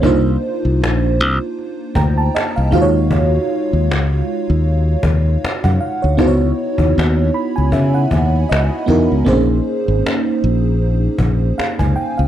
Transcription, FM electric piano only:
0.02 A#3 D4 D#4 F4 C5
1.96 G5 A#5
2.18 A5
2.35 D#5
2.56 F5
2.71 G#3 D#4 F4 F#4 F5
2.75 C5
2.82 C#5
5.64 F#5
5.81 F5
6.02 C#5
6.17 B3 D#4 E4 F#4 C5
6.27 C#5
7.34 B5
7.56 G#5
7.73 E5
7.94 F#5
8.49 D#5
8.86 B3 D#4 E4 F#4 A#4
9.25 A#3 C4 D#4 G#4 C5
9.32 C#4
11.58 F5
11.79 G#5
11.96 G5
12.18 F5

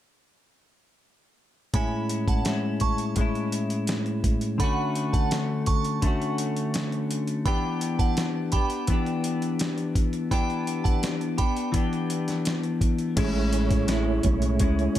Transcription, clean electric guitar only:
1.74 A2 G#3 C#4 E4
2.44 A2 G#3 C#4
2.48 E4
3.15 A2 G#3
3.20 C#4 E4
4.58 D3 A3
4.62 C#4 F#4
6.02 D3 A3
6.06 C#4 F#4
7.46 E3 B3 D4 G4
8.53 B3 D4 G4
8.88 E3 B3 D4
8.93 G4
10.31 E3 B3 D4 G4
11.38 B3 D4 G4
11.72 E3 B3 D4
11.77 G4
13.16 A2 G#3 C#4 E4
13.87 A2 G#3 C#4 E4
14.61 G#3 C#4 E4

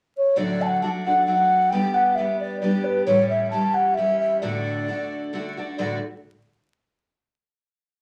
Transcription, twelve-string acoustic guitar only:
0.36 D2 A2 F#3 A3 D4 F#4
0.82 F#3 A3 D4 F#4
1.06 F#3 A3 D4 F#4
1.27 F#3 A3 D4 F#4
1.72 G3 B3 D4 G4
2.18 G3 B3 D4 G4
2.62 G3 B3 D4 G4
3.07 A2 E3 G3 C#4 G4
3.52 E3 G3 C#4 G4
3.97 E3 G3 C#4 G4
4.42 D2 A2 D3 A3 D4 F#4
4.88 D3 A3 D4 F#4
5.33 D3 A3 D4 F#4
5.57 D3 A3 D4 F#4
5.78 D2 A2 D3 A3 D4 F#4

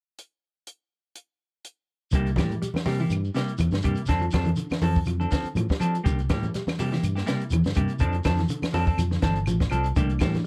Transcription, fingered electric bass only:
2.13 C2
2.37 A2
2.86 C3
3.10 G2
3.59 E2
3.72 G2
3.85 G2
4.09 F2
4.33 F2
4.82 F2
5.07 F2
5.44 muted fingered electric bass stroke
5.55 A2
5.80 F3
6.05 C2
6.29 A2
6.79 C3
7.03 G2
7.51 E2
7.65 G2
7.76 G2
8.01 F2
8.25 F2
8.74 F2
8.98 F2
9.23 G1
9.47 A1
9.72 C2
9.96 C2
10.20 A2

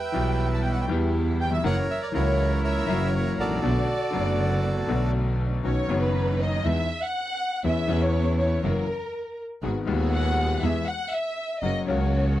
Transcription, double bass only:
0.14 B1
0.89 E2
1.63 F#1
2.13 C#2
2.88 F#1
3.38 A1
3.63 B1
4.13 F#1
4.89 B1
5.64 B1
5.89 F#1
6.64 E2
7.64 E2
7.89 E2
8.63 F#1
9.63 G#1
9.87 D#2
10.62 E2
11.63 F#1
11.88 C#2

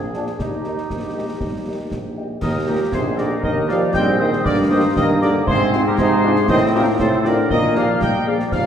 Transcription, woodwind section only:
Already playing: G#4
0.39 G4
2.42 A#4
2.68 G4
2.93 G#4
3.18 A#4
3.43 A#4
3.69 D5
3.94 D#5
4.20 C5
4.45 A#4
4.71 C5
4.97 A#4
5.22 A#4
5.48 G#4
5.86 G4
5.98 G#4
6.49 C5
6.75 G4
7.00 A4
7.26 A#4
7.51 A#4
7.77 D5
8.03 D#5
8.28 D5
8.53 D5

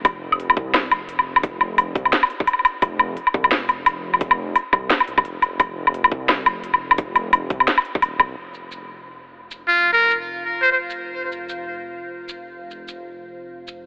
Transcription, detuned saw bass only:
Already playing: F1
0.57 C2
0.91 F1
1.95 C2
2.82 F1
3.34 C2
3.52 F1
4.73 C2
5.08 C2
5.25 F1
6.12 C2
6.46 F1
7.50 C2
8.02 D#1
8.20 C2
8.37 F1

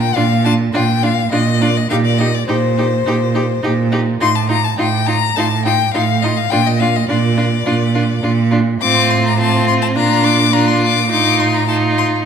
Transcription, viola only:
0.17 D4
0.45 D4
0.74 D4
1.03 D4
1.32 D4
1.61 D4
1.90 D#4
2.20 D#4
2.48 D#4
2.78 D#4
3.06 D#4
3.35 D#4
3.63 D#4
3.92 D#4
4.21 D#4
4.49 D#4
4.78 D#4
5.07 D#4
5.37 D#4
5.65 D#4
5.94 D#4
6.23 D#4
6.52 D4
6.81 D4
7.09 D4
7.37 D4
7.66 D4
7.95 D4
8.23 D4
8.52 D4
8.81 C4
9.39 C4
9.96 D4
10.53 D4
11.10 D#4
11.68 D#4

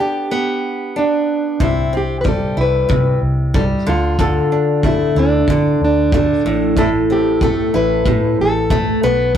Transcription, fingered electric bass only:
1.61 C2
2.57 C2
2.90 C3
3.21 C2
3.87 D2
5.15 D2
5.48 D3
5.80 D2
6.45 A1
7.74 A1
8.05 A2
8.39 A1
9.03 B1

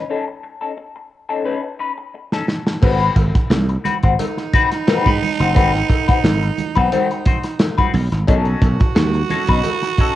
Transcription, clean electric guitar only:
0.09 C#4 D#4 A4
0.29 muted clean electric guitar stroke
0.43 muted clean electric guitar stroke
0.61 C#4 D#4 A4
0.77 muted clean electric guitar stroke
0.96 muted clean electric guitar stroke
1.29 C#4 D#4 A4
1.44 C#4 D#4 B4
1.63 muted clean electric guitar stroke
1.79 C#4 D#4 B4
1.98 muted clean electric guitar stroke
2.14 muted clean electric guitar stroke
2.33 C#4 D#4 A4
2.49 muted clean electric guitar stroke
2.67 muted clean electric guitar stroke
2.83 C4 F#4 B4
3.35 muted clean electric guitar stroke
3.51 muted clean electric guitar stroke
3.70 muted clean electric guitar stroke
3.84 C4 F#4 B4
4.03 C4 F#4 C5
4.38 muted clean electric guitar stroke
4.53 C4 F#4 B4
4.72 muted clean electric guitar stroke
4.88 C4 F#4 B4
5.22 muted clean electric guitar stroke
5.40 C4 F#4 C5
5.55 C4 F#4 B4
5.73 muted clean electric guitar stroke
5.89 muted clean electric guitar stroke
6.08 C4 F#4 B4
6.24 muted clean electric guitar stroke
6.43 muted clean electric guitar stroke
6.75 C4 F#4 B4
6.93 C4 F#4 C5
7.11 muted clean electric guitar stroke
7.27 C4 F#4 C5
7.44 muted clean electric guitar stroke
7.60 muted clean electric guitar stroke
7.78 C4 F#4 B4
7.95 muted clean electric guitar stroke
8.12 muted clean electric guitar stroke
8.27 C#4 D#4 A4
8.80 muted clean electric guitar stroke
8.97 muted clean electric guitar stroke
9.15 muted clean electric guitar stroke
9.30 C#4 D#4 A4
9.49 C#4 D#4 B4
9.83 muted clean electric guitar stroke
10.00 C#4 D#4 A4

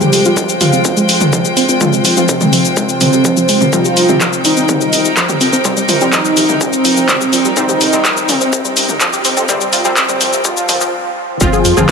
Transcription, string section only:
Already playing: G#3 F4 C5 G5
3.73 D#4 A#4
11.41 G#3 F4 C5 G5

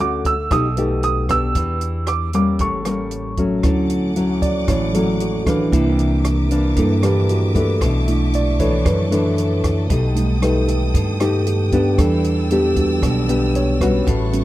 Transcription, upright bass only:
Already playing: D2
0.51 B1
1.55 E2
2.59 A1
3.63 D2
4.68 A1
5.72 C2
6.76 G2
7.81 B1
8.85 F#2
9.90 B1
10.94 G2
11.98 E2
13.02 B1
14.07 A1

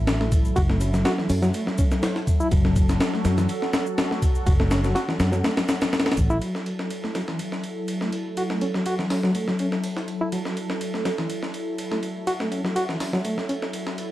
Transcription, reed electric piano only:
0.21 A3
0.56 F#4
0.69 A3
0.80 C#4
0.94 F#3
1.05 F#4
1.18 E3
1.30 C#4
1.42 F#3
1.54 A3
1.67 F#3
1.78 C#4
2.40 E4
2.52 F#3
3.14 A3
3.25 F#3
3.38 E3
4.11 A3
4.46 F#4
4.60 A3
4.71 C#4
4.84 F#3
4.95 F#4
5.08 E3
5.20 C#4
5.32 F#3
5.44 A3
5.57 F#3
5.68 C#4
6.30 E4
6.41 F#3
7.04 A3
7.15 F#3
7.28 E3
8.02 A3
8.37 F#4
8.50 A3
8.62 C#4
8.75 F#3
8.86 F#4
8.99 E3
9.10 C#4
9.23 F#3
9.35 A3
9.48 F#3
9.60 C#4
10.21 E4
10.33 F#3
10.94 A3
11.05 F#3
11.19 E3
11.92 A3
12.27 F#4
12.40 A3
12.51 C#4
12.64 F#3
12.76 F#4
12.89 E3
13.00 C#4
13.13 F#3
13.25 A3
13.38 F#3
13.49 C#4

